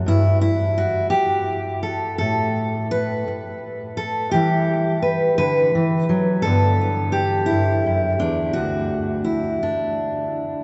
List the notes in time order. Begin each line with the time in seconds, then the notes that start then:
0.06 G2 E4
0.41 E4
0.78 F#4
1.10 G4, muted steel-string acoustic guitar stroke
1.83 A4
2.18 A2 A4
2.91 B4
3.28 muted steel-string acoustic guitar stroke
3.97 A4
4.31 E3 G3 E4 G4
5.02 B4
5.38 D3 B4
5.75 E3
6.09 F#3
6.42 G2 D3 A4
6.47 B3
6.81 B3
7.12 G4
7.46 E4
7.51 G2
7.86 F#2
8.19 E2 D4
8.53 D2 F#4
9.24 E4
9.63 D4, muted steel-string acoustic guitar stroke